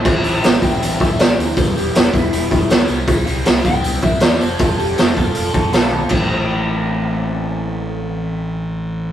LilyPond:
<<
  \new Staff \with { instrumentName = "Clean electric guitar" } { \time 4/4 \key a \minor \tempo 4 = 158 r4. g''4 e''8 d''8 c''8 | a'8 g'8 e'8 e'2 r8 | r4. g''4 e''8 d''8 c''8 | a'8 g'8 e'8 f'2 r8 |
r1 | r1 | }
  \new Staff \with { instrumentName = "Overdriven electric guitar" } { \time 4/4 \key a \minor <e c' e'>8 <c' e'>8 <e c' e'>8 <e c' e'>8 <e c' e'>8 <c' e'>8 <e c' e'>8 <c' e'>8 | <g b e'>8 <b e'>8 <g b e'>8 <g b e'>8 <g b e'>8 <b e'>8 <g b e'>8 <g c' e'>8 | <g c' e'>8 <c' e'>8 <g c' e'>8 <g c' e'>8 <g c' e'>8 <c' e'>8 <g c' e'>8 <c' f' a'>8 | <c' f' a'>8 <f' a'>8 <c' f' a'>8 <c' f' a'>8 <c' f' a'>8 <f' a'>8 <c' f' a'>8 <f' a'>8 |
<e a c'>1~ | <e a c'>1 | }
  \new Staff \with { instrumentName = "Fingered electric bass" } { \clef bass \time 4/4 \key a \minor a,,8 a,,8 a,,8 a,,8 a,,8 a,,8 a,,8 d,8 | e,,8 e,,8 e,,8 e,,8 e,,8 e,,8 d,8 c,8 | c,8 c,8 c,8 c,8 c,8 c,8 e,8 f,,8 | f,,8 f,,8 f,,8 f,,8 f,,8 f,,8 b,,4 |
a,,1~ | a,,1 | }
  \new DrumStaff \with { instrumentName = "Drums" } \drummode { \time 4/4 <cymc bd>8 hho8 <hho sn>8 <hho bd>8 hho8 <hho bd>8 <hho sn>8 hho8 | <hho bd>8 hho8 <hho sn>8 <hho bd>8 hho8 <hho bd>8 <hho sn>16 sn16 hho8 | <hho bd>8 hho8 <hho sn>8 <hho bd>8 hho8 <hho bd>8 <hho sn>16 sn16 hho8 | <hho bd>8 hho8 <hho sn>8 <hho bd>8 hho8 <hho bd>8 <hho sn>8 tommh8 |
<cymc bd>4 r4 r4 r4 | r4 r4 r4 r4 | }
>>